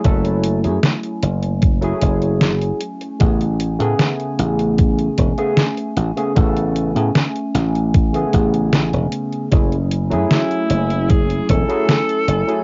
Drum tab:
HH |xxxxxxxxxxxxxxxx|xxxxxxxxxxxxxxxx|xxxxxxxxxxxxxxxx|xxxxxxxxxxxxxxxx|
SD |----o-------o---|----o-------o---|----o-o-----o---|----o-------o---|
BD |o-------o-o-----|o-------o-o-----|o-------o-o-----|o-------o-o-----|